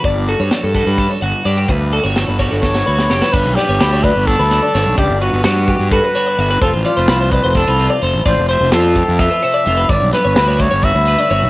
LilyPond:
<<
  \new Staff \with { instrumentName = "Clean electric guitar" } { \time 7/8 \key g \lydian \tempo 4 = 128 d''8 a'16 cis''8 a'16 a'16 b'8 cis''16 fis''8 d''16 g'16 | b'8 a'16 cis''8 b'16 cis''16 a'8 cis''16 b'8 g'16 b'16 | cis''8 d''16 cis''16 b'16 cis''16 d''16 cis''8 b'8 d''16 cis''8 | d''8 b'8 fis'8 g'8 a'16 b'16 cis''16 d''16 e''16 b'16 |
c''8 d''16 c''16 b'16 c''16 d''16 c''8 b'8 d''16 c''8 | d''8 c''8 f'8 g'8 a'16 b'16 c''16 d''16 e''16 b'16 | cis''8 d''16 cis''16 b'16 cis''16 d''16 cis''8 b'8 d''16 cis''8 | }
  \new Staff \with { instrumentName = "Trumpet" } { \time 7/8 \key g \lydian r2. r8 | r2 cis''4. | b'8 g'4 b'8 a'4. | g'8 fis'8 fis'4 b'4. |
a'8 f'4 b'8 a'4 r8 | c''8 c''8 a'4 e''4. | d''8 b'4 cis''8 e''4. | }
  \new Staff \with { instrumentName = "Clean electric guitar" } { \time 7/8 \key g \lydian << { r8 fis'8 a'8 fis'8 a'8 fis'8 g'16 a'16 | r8 fis'8 a'8 fis'8 a'8 fis'8 g'16 a'16 | r8 b8 d'4 d'8 d'8 d'8~ | d'8 b8 b4 fis'8 fis'8 fis'8 |
r8 g16 a16 r4 d'16 f'16 f'8 a'8 | r8 e'8 f'4 f'8 a'8 f'8 | r8 b8 fis'4 fis'8 b'8 fis'8 | } \\ { g,4. g4. d8 | g,4. g4. d8 | g,4 g4. d4 | g,4 g4. d4 |
f4 a4. c4 | f4 a4. c4 | g,4 g4. d4 | } >> }
  \new Staff \with { instrumentName = "Fingered electric bass" } { \clef bass \time 7/8 \key g \lydian g,,8. g,16 r16 g,8 g,8 r16 g,,16 r16 g,8 | d,8. g,,8 g,,8 g,,8. d,8 fis,,16 r16 | g,,16 b,,16 r16 g,,16 d,8. g,,8 d,8 r16 g,,16 b,,16 | cis,16 g,,8 g,,16 g,8. g,8 r8. g,,8 |
f,,16 a,,16 r16 f,,16 c,8. f,,8 c,8 r16 f,,16 a,,16 | a,,16 f,,8 f,,16 f,8. f,8 r8. f,,8 | g,,16 b,,16 r16 g,,16 d,8. g,,8 d,8 r16 g,,16 b,,16 | }
  \new DrumStaff \with { instrumentName = "Drums" } \drummode { \time 7/8 <hh bd>8 hh8 <hh sn>8 <hh bd>8 <hh bd>8 hh8 hh8 | <hh bd>8 hh8 <hh sn>8 <hh bd>8 <bd sn>16 sn8 sn16 sn16 sn16 | <cymc bd>8 <hh sn>8 <hh sn>8 <hh bd>8 <hh bd>8 <hh sn>8 <hh sn>8 | <hh bd>8 hh8 <hh sn>8 <hh bd>8 <hh bd>8 hh8 hh8 |
<hh bd>8 hh8 <hh sn>8 <hh bd>8 <hh bd sn>8 hh8 hh8 | <hh bd>8 hh8 <hh sn>8 <hh bd>8 <hh bd sn>8 hh8 hh8 | <hh bd>8 <hh sn>8 <hh sn>8 <hh bd>8 <hh bd>8 hh8 hh8 | }
>>